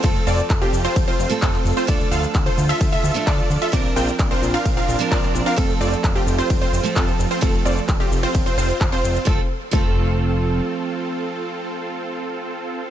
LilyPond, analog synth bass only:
\new Staff \with { instrumentName = "Analog synth bass" } { \clef bass \time 4/4 \key f \major \tempo 4 = 130 f,,8 f,,8 f,,8 f,,8 f,,8 f,,8 f,,8 f,,8 | d,8 d,8 d,8 d,8 d,8 d,8 d,8 d,8 | bes,,8 bes,,8 bes,,8 bes,,8 bes,,8 bes,,8 bes,,8 bes,,8 | f,,8 f,,8 f,,8 f,,8 f,,8 f,,8 f,,8 f,,8 |
f,,8 f,,8 f,,8 f,,8 f,,8 f,,8 f,,8 f,,8 | f,,8 r8 f,,2 r4 | r1 | }